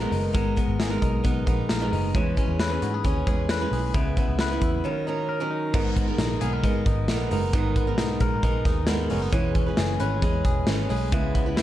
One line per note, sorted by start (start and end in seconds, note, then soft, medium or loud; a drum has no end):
0.00 0.35 G#2 medium
0.00 0.35 D#3 medium
0.00 0.34 G#3 medium
0.00 0.32 G#3 medium
0.00 0.57 B3 medium
0.00 0.33 B3 medium
0.00 0.11 D#4 medium
0.00 0.33 D#4 medium
0.00 0.79 A#4 medium
0.00 0.34 A#4 medium
0.12 0.31 F#1 medium
0.12 1.00 D#4 medium
0.12 open hi-hat medium
0.33 0.54 G#1 medium
0.33 0.55 G#3 medium
0.33 2.15 G#3 medium
0.33 0.56 B3 medium
0.33 0.57 D#4 medium
0.33 0.57 A#4 medium
0.33 kick loud
0.33 closed hi-hat medium
0.56 0.91 G#3 medium
0.56 0.90 B3 medium
0.56 1.23 B3 medium
0.56 0.90 D#4 medium
0.56 0.89 A#4 medium
0.56 kick medium
0.56 closed hi-hat medium
0.68 0.97 G#1 medium
0.79 0.90 G#4 medium
0.79 snare medium
0.79 closed hi-hat medium
0.90 1.22 G#3 soft
0.90 1.24 B3 soft
0.90 1.24 D#4 soft
0.90 1.24 A#4 medium
0.90 1.68 A#4 soft
1.02 1.21 B1 medium
1.02 1.45 D#4 soft
1.02 kick medium
1.02 closed hi-hat medium
1.24 1.44 B1 medium
1.24 1.46 G#3 medium
1.24 2.40 B3 medium
1.24 1.46 B3 medium
1.24 1.47 D#4 medium
1.24 1.48 A#4 medium
1.24 kick medium
1.24 closed hi-hat medium
1.46 1.66 A#1 medium
1.46 1.81 G#3 medium
1.46 1.80 B3 medium
1.46 1.91 D#4 medium
1.46 1.80 D#4 medium
1.46 1.80 A#4 medium
1.46 kick medium
1.46 closed hi-hat medium
1.69 1.89 A#1 medium
1.69 2.19 A#4 medium
1.69 snare loud
1.69 closed hi-hat medium
1.81 2.15 G#2 medium
1.81 2.15 D#3 medium
1.81 2.13 G#3 medium
1.81 2.15 B3 medium
1.81 2.15 D#4 medium
1.81 2.15 A#4 medium
1.92 2.16 F#1 medium
1.92 2.19 D#4 medium
1.92 open hi-hat medium
2.15 2.34 E2 loud
2.15 3.95 E3 medium
2.15 2.36 G#3 medium
2.15 2.36 C#4 medium
2.15 2.37 G#4 medium
2.15 2.37 B4 medium
2.15 kick loud
2.15 closed hi-hat medium
2.37 2.71 G#3 medium
2.37 2.71 C#4 medium
2.37 3.04 C#4 medium
2.37 2.70 G#4 medium
2.37 2.69 B4 medium
2.37 kick medium
2.37 closed hi-hat medium
2.48 2.77 E2 medium
2.60 3.50 B4 medium
2.60 snare loud
2.60 closed hi-hat medium
2.70 3.04 C#4 soft
2.70 3.04 G#4 soft
2.70 3.04 B4 medium
2.82 3.01 G#2 medium
2.82 2.94 F#4 medium
2.82 closed hi-hat medium
2.94 3.27 G#4 soft
3.04 3.24 D#2 medium
3.04 3.26 G#3 medium
3.04 3.99 C#4 medium
3.04 3.26 C#4 medium
3.04 3.27 G#4 medium
3.04 3.27 B4 medium
3.04 kick medium
3.04 closed hi-hat medium
3.27 3.65 E2 medium
3.27 3.61 G#3 medium
3.27 3.61 C#4 medium
3.27 3.72 G#4 medium
3.27 3.61 G#4 medium
3.27 3.60 B4 medium
3.27 kick medium
3.27 closed hi-hat medium
3.49 4.00 B4 medium
3.49 snare loud
3.49 closed hi-hat medium
3.61 3.95 E3 medium
3.61 3.93 G#3 medium
3.61 3.94 C#4 medium
3.61 3.95 G#4 medium
3.61 3.95 B4 medium
3.72 3.91 B1 medium
3.72 3.99 G#4 soft
3.72 open hi-hat medium
3.94 4.13 C#2 medium
3.94 4.84 C#3 medium
3.94 4.15 G#3 medium
3.94 4.16 B3 medium
3.94 4.17 E4 medium
3.94 4.17 B4 medium
3.94 kick loud
3.94 closed hi-hat medium
4.17 4.50 G#3 medium
4.17 4.51 B3 medium
4.17 4.89 B3 medium
4.17 4.51 E4 medium
4.17 4.50 B4 medium
4.17 kick medium
4.17 closed hi-hat medium
4.28 4.57 C#2 medium
4.39 4.89 B4 medium
4.39 snare medium
4.39 closed hi-hat medium
4.51 4.84 B3 soft
4.51 4.85 E4 soft
4.51 4.85 B4 soft
4.61 4.81 E2 medium
4.61 4.90 E4 medium
4.61 kick medium
4.61 closed hi-hat medium
4.84 8.35 D#3 medium
4.84 5.06 F#3 medium
4.84 5.07 C#4 medium
4.84 5.07 D#4 medium
4.84 5.07 A#4 medium
5.07 5.40 F#3 medium
5.07 5.40 C#4 medium
5.07 5.50 D#4 medium
5.07 5.39 D#4 medium
5.07 5.39 A#4 medium
5.29 5.99 A#4 medium
5.40 5.72 D#3 soft
5.40 5.74 F#3 medium
5.40 5.74 C#4 medium
5.40 5.73 D#4 medium
5.40 5.74 A#4 medium
5.51 6.19 D#4 medium
5.74 6.12 G#1 medium
5.74 6.07 G#2 medium
5.74 7.53 G#2 medium
5.74 6.08 D#3 medium
5.74 6.08 G#3 medium
5.74 6.07 B3 medium
5.74 6.07 D#4 medium
5.74 6.06 A#4 medium
5.74 kick loud
5.74 crash medium
5.96 7.09 B3 medium
5.96 kick medium
5.96 closed hi-hat medium
6.08 6.40 G#3 soft
6.08 6.40 B3 soft
6.08 6.41 D#4 soft
6.08 6.41 A#4 soft
6.18 6.38 A#1 medium
6.18 6.85 D#4 medium
6.18 snare medium
6.18 closed hi-hat medium
6.41 6.65 B1 medium
6.41 6.63 G#3 medium
6.41 6.63 B3 medium
6.41 6.64 D#4 medium
6.41 6.53 G#4 medium
6.41 6.65 A#4 medium
6.41 closed hi-hat medium
6.53 8.20 A#4 medium
6.64 6.83 G#2 medium
6.64 7.08 G#3 medium
6.64 8.43 G#3 medium
6.64 7.09 B3 medium
6.64 7.08 D#4 medium
6.64 7.09 A#4 medium
6.64 kick medium
6.64 closed hi-hat medium
6.86 7.05 G#1 medium
6.86 7.30 D#4 medium
6.86 kick medium
6.86 closed hi-hat medium
7.08 7.27 A#1 medium
7.08 7.30 G#3 medium
7.08 7.30 B3 medium
7.08 7.76 B3 medium
7.08 7.31 D#4 medium
7.08 7.31 A#4 medium
7.08 snare loud
7.08 closed hi-hat medium
7.31 7.50 F#1 medium
7.31 7.53 G#3 medium
7.31 7.53 B3 medium
7.31 7.98 D#4 medium
7.31 7.53 D#4 medium
7.31 7.54 A#4 medium
7.31 open hi-hat medium
7.53 7.98 G#1 loud
7.53 7.87 G#2 medium
7.53 9.34 G#2 medium
7.53 7.88 D#3 medium
7.53 7.88 G#3 medium
7.53 7.87 B3 medium
7.53 7.86 D#4 medium
7.53 7.86 A#4 medium
7.53 kick loud
7.53 closed hi-hat medium
7.76 8.88 B3 medium
7.76 kick medium
7.76 closed hi-hat medium
7.87 8.19 G#3 soft
7.87 8.20 B3 soft
7.87 8.21 D#4 soft
7.87 8.21 A#4 medium
7.98 8.17 B1 medium
7.98 8.65 D#4 medium
7.98 snare loud
7.98 closed hi-hat medium
8.20 8.40 A#1 medium
8.20 8.42 G#3 medium
8.20 8.43 B3 medium
8.20 8.43 D#4 medium
8.20 9.38 A#4 medium
8.20 8.44 A#4 medium
8.20 kick medium
8.20 closed hi-hat medium
8.43 8.62 A#1 medium
8.43 8.87 G#3 medium
8.43 10.22 G#3 medium
8.43 8.87 B3 medium
8.43 8.88 D#4 medium
8.43 8.88 A#4 medium
8.43 kick medium
8.43 closed hi-hat medium
8.65 9.12 D#2 medium
8.65 9.10 D#4 medium
8.65 kick loud
8.65 snare soft
8.65 closed hi-hat medium
8.87 9.09 G#3 medium
8.87 9.10 B3 medium
8.87 9.55 B3 medium
8.87 9.11 D#4 medium
8.87 9.11 A#4 medium
8.87 snare loud
8.87 closed hi-hat medium
9.10 9.29 F#1 medium
9.10 9.32 G#3 medium
9.10 9.33 B3 medium
9.10 9.22 C#4 medium
9.10 9.33 D#4 medium
9.10 9.34 A#4 medium
9.10 open hi-hat medium
9.22 9.37 D#4 medium
9.32 9.71 E1 loud
9.32 9.66 E3 medium
9.32 11.12 E3 medium
9.32 9.67 G#3 medium
9.32 9.67 C#4 medium
9.32 9.67 G#4 medium
9.32 9.65 B4 medium
9.32 kick loud
9.32 closed hi-hat medium
9.55 10.67 C#4 medium
9.55 kick medium
9.55 closed hi-hat medium
9.66 9.99 C#4 soft
9.66 10.00 G#4 soft
9.66 10.00 B4 medium
9.77 9.97 F#1 medium
9.77 10.45 G#4 medium
9.77 snare loud
9.77 closed hi-hat medium
9.99 10.19 G#1 medium
9.99 10.21 G#3 medium
9.99 10.21 C#4 medium
9.99 10.22 G#4 medium
9.99 11.62 B4 medium
9.99 10.23 B4 medium
9.99 closed hi-hat medium
10.22 10.42 E2 medium
10.22 10.67 G#3 medium
10.22 11.62 G#3 medium
10.22 10.67 C#4 medium
10.22 10.68 G#4 medium
10.22 10.68 B4 medium
10.22 kick medium
10.22 closed hi-hat medium
10.45 10.64 E1 medium
10.45 10.90 G#4 medium
10.45 kick loud
10.45 closed hi-hat medium
10.67 10.87 G#1 medium
10.67 10.88 G#3 medium
10.67 10.89 C#4 medium
10.67 11.17 C#4 medium
10.67 10.90 G#4 medium
10.67 10.90 B4 medium
10.67 snare loud
10.67 closed hi-hat medium
10.89 11.12 B1 medium
10.89 11.11 G#3 medium
10.89 11.12 C#4 medium
10.89 11.56 G#4 medium
10.89 11.13 G#4 medium
10.89 11.12 B4 medium
10.89 open hi-hat medium
11.12 11.58 C#2 loud
11.12 11.46 C#3 medium
11.12 11.62 C#3 medium
11.12 11.46 G#3 medium
11.12 11.46 B3 medium
11.12 11.46 E4 medium
11.12 11.45 B4 medium
11.12 kick loud
11.12 closed hi-hat medium
11.35 11.62 B3 medium
11.35 kick medium
11.35 closed hi-hat medium
11.46 11.62 B3 soft
11.46 11.62 E4 soft
11.46 11.62 B4 medium
11.57 11.62 D#2 medium
11.57 11.62 E4 medium
11.57 snare loud
11.57 closed hi-hat medium